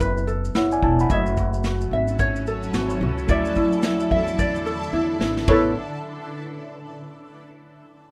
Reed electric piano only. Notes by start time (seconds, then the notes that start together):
Already playing: B3 A4 E5
0.56 C#5 F#5
0.72 D5 G#5
0.84 E5 A5
1.01 F#5 B5
1.09 A3 F#4
1.13 D#5
1.20 E5
3.27 A3 E4 D5
5.49 B3 A4 C#5